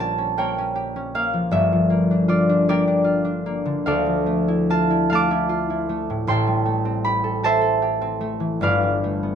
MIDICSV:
0, 0, Header, 1, 2, 480
1, 0, Start_track
1, 0, Tempo, 768246
1, 962, Time_signature, 6, 3, 24, 8
1, 1917, Tempo, 789474
1, 2397, Tempo, 839161
1, 3357, Tempo, 768246
1, 4797, Tempo, 803213
1, 5699, End_track
2, 0, Start_track
2, 0, Title_t, "Harp"
2, 0, Program_c, 0, 46
2, 0, Note_on_c, 0, 34, 66
2, 0, Note_on_c, 0, 46, 77
2, 0, Note_on_c, 0, 53, 56
2, 0, Note_on_c, 0, 55, 54
2, 0, Note_on_c, 0, 58, 69
2, 0, Note_on_c, 0, 61, 61
2, 0, Note_on_c, 0, 65, 66
2, 0, Note_on_c, 0, 67, 71
2, 0, Note_on_c, 0, 70, 78
2, 0, Note_on_c, 0, 73, 73
2, 0, Note_on_c, 0, 77, 109
2, 1, Note_on_c, 0, 81, 115
2, 106, Note_off_c, 0, 61, 0
2, 113, Note_on_c, 0, 61, 66
2, 228, Note_off_c, 0, 58, 0
2, 233, Note_off_c, 0, 70, 0
2, 233, Note_off_c, 0, 73, 0
2, 233, Note_on_c, 0, 58, 78
2, 237, Note_on_c, 0, 79, 100
2, 239, Note_on_c, 0, 70, 83
2, 242, Note_on_c, 0, 73, 74
2, 357, Note_off_c, 0, 61, 0
2, 364, Note_on_c, 0, 61, 79
2, 410, Note_off_c, 0, 81, 0
2, 464, Note_off_c, 0, 67, 0
2, 471, Note_on_c, 0, 67, 76
2, 577, Note_off_c, 0, 53, 0
2, 591, Note_off_c, 0, 61, 0
2, 599, Note_on_c, 0, 61, 69
2, 709, Note_off_c, 0, 58, 0
2, 710, Note_off_c, 0, 77, 0
2, 716, Note_on_c, 0, 58, 70
2, 718, Note_on_c, 0, 77, 112
2, 834, Note_on_c, 0, 53, 63
2, 945, Note_on_c, 0, 31, 75
2, 947, Note_on_c, 0, 43, 89
2, 951, Note_on_c, 0, 76, 123
2, 981, Note_off_c, 0, 61, 0
2, 982, Note_off_c, 0, 73, 0
2, 985, Note_off_c, 0, 34, 0
2, 989, Note_off_c, 0, 46, 0
2, 1070, Note_off_c, 0, 53, 0
2, 1078, Note_on_c, 0, 53, 65
2, 1179, Note_off_c, 0, 58, 0
2, 1187, Note_on_c, 0, 58, 71
2, 1317, Note_on_c, 0, 62, 69
2, 1418, Note_off_c, 0, 65, 0
2, 1426, Note_on_c, 0, 65, 79
2, 1432, Note_on_c, 0, 74, 111
2, 1551, Note_off_c, 0, 62, 0
2, 1558, Note_on_c, 0, 62, 79
2, 1672, Note_off_c, 0, 58, 0
2, 1672, Note_off_c, 0, 74, 0
2, 1675, Note_off_c, 0, 70, 0
2, 1678, Note_on_c, 0, 58, 78
2, 1679, Note_off_c, 0, 67, 0
2, 1681, Note_on_c, 0, 74, 122
2, 1683, Note_on_c, 0, 70, 93
2, 1687, Note_on_c, 0, 67, 90
2, 1767, Note_off_c, 0, 76, 0
2, 1789, Note_off_c, 0, 62, 0
2, 1796, Note_on_c, 0, 62, 79
2, 1894, Note_off_c, 0, 65, 0
2, 1901, Note_on_c, 0, 65, 79
2, 2017, Note_off_c, 0, 62, 0
2, 2025, Note_on_c, 0, 62, 72
2, 2074, Note_off_c, 0, 55, 0
2, 2148, Note_off_c, 0, 58, 0
2, 2155, Note_on_c, 0, 58, 70
2, 2273, Note_on_c, 0, 50, 65
2, 2390, Note_off_c, 0, 77, 0
2, 2397, Note_on_c, 0, 77, 115
2, 2398, Note_off_c, 0, 74, 0
2, 2401, Note_on_c, 0, 38, 89
2, 2407, Note_on_c, 0, 69, 92
2, 2407, Note_on_c, 0, 74, 99
2, 2408, Note_off_c, 0, 31, 0
2, 2410, Note_off_c, 0, 43, 0
2, 2414, Note_off_c, 0, 79, 0
2, 2415, Note_off_c, 0, 50, 0
2, 2416, Note_off_c, 0, 58, 0
2, 2418, Note_off_c, 0, 70, 0
2, 2420, Note_off_c, 0, 67, 0
2, 2507, Note_off_c, 0, 53, 0
2, 2513, Note_on_c, 0, 53, 62
2, 2629, Note_on_c, 0, 57, 74
2, 2754, Note_on_c, 0, 64, 77
2, 2872, Note_off_c, 0, 65, 0
2, 2879, Note_on_c, 0, 65, 82
2, 2882, Note_on_c, 0, 81, 125
2, 2988, Note_off_c, 0, 64, 0
2, 2995, Note_on_c, 0, 64, 71
2, 3103, Note_off_c, 0, 77, 0
2, 3105, Note_on_c, 0, 77, 109
2, 3109, Note_off_c, 0, 57, 0
2, 3115, Note_off_c, 0, 81, 0
2, 3116, Note_on_c, 0, 57, 86
2, 3122, Note_on_c, 0, 81, 100
2, 3136, Note_on_c, 0, 86, 127
2, 3219, Note_off_c, 0, 64, 0
2, 3226, Note_on_c, 0, 64, 87
2, 3325, Note_off_c, 0, 65, 0
2, 3331, Note_on_c, 0, 65, 75
2, 3451, Note_off_c, 0, 64, 0
2, 3459, Note_on_c, 0, 64, 67
2, 3572, Note_off_c, 0, 57, 0
2, 3579, Note_on_c, 0, 57, 70
2, 3708, Note_on_c, 0, 45, 66
2, 3814, Note_off_c, 0, 45, 0
2, 3817, Note_on_c, 0, 33, 87
2, 3823, Note_on_c, 0, 45, 80
2, 3824, Note_on_c, 0, 84, 123
2, 3828, Note_off_c, 0, 81, 0
2, 3830, Note_on_c, 0, 79, 94
2, 3835, Note_on_c, 0, 81, 101
2, 3844, Note_off_c, 0, 65, 0
2, 3853, Note_off_c, 0, 62, 0
2, 3854, Note_off_c, 0, 77, 0
2, 3855, Note_off_c, 0, 86, 0
2, 3857, Note_off_c, 0, 53, 0
2, 3861, Note_off_c, 0, 38, 0
2, 3862, Note_off_c, 0, 74, 0
2, 3939, Note_on_c, 0, 55, 67
2, 4049, Note_off_c, 0, 57, 0
2, 4056, Note_on_c, 0, 57, 70
2, 4179, Note_on_c, 0, 60, 70
2, 4300, Note_on_c, 0, 83, 127
2, 4306, Note_on_c, 0, 67, 72
2, 4413, Note_off_c, 0, 69, 0
2, 4420, Note_on_c, 0, 69, 71
2, 4536, Note_off_c, 0, 67, 0
2, 4539, Note_off_c, 0, 81, 0
2, 4542, Note_on_c, 0, 67, 80
2, 4548, Note_on_c, 0, 81, 127
2, 4554, Note_on_c, 0, 72, 107
2, 4558, Note_on_c, 0, 76, 93
2, 4646, Note_off_c, 0, 69, 0
2, 4654, Note_on_c, 0, 69, 85
2, 4776, Note_off_c, 0, 67, 0
2, 4784, Note_on_c, 0, 67, 66
2, 4894, Note_off_c, 0, 60, 0
2, 4901, Note_on_c, 0, 60, 73
2, 5008, Note_off_c, 0, 57, 0
2, 5015, Note_on_c, 0, 57, 70
2, 5131, Note_on_c, 0, 52, 60
2, 5255, Note_on_c, 0, 31, 77
2, 5262, Note_on_c, 0, 43, 88
2, 5267, Note_on_c, 0, 77, 122
2, 5269, Note_on_c, 0, 71, 79
2, 5272, Note_on_c, 0, 74, 89
2, 5281, Note_off_c, 0, 52, 0
2, 5282, Note_off_c, 0, 33, 0
2, 5282, Note_off_c, 0, 64, 0
2, 5283, Note_off_c, 0, 45, 0
2, 5284, Note_off_c, 0, 84, 0
2, 5285, Note_off_c, 0, 60, 0
2, 5291, Note_off_c, 0, 72, 0
2, 5292, Note_off_c, 0, 76, 0
2, 5378, Note_off_c, 0, 55, 0
2, 5385, Note_on_c, 0, 55, 56
2, 5504, Note_off_c, 0, 57, 0
2, 5511, Note_on_c, 0, 57, 61
2, 5626, Note_on_c, 0, 59, 60
2, 5699, Note_off_c, 0, 31, 0
2, 5699, Note_off_c, 0, 43, 0
2, 5699, Note_off_c, 0, 55, 0
2, 5699, Note_off_c, 0, 57, 0
2, 5699, Note_off_c, 0, 59, 0
2, 5699, Note_off_c, 0, 67, 0
2, 5699, Note_off_c, 0, 69, 0
2, 5699, Note_off_c, 0, 71, 0
2, 5699, Note_off_c, 0, 74, 0
2, 5699, Note_off_c, 0, 77, 0
2, 5699, Note_off_c, 0, 79, 0
2, 5699, Note_off_c, 0, 81, 0
2, 5699, Note_off_c, 0, 83, 0
2, 5699, End_track
0, 0, End_of_file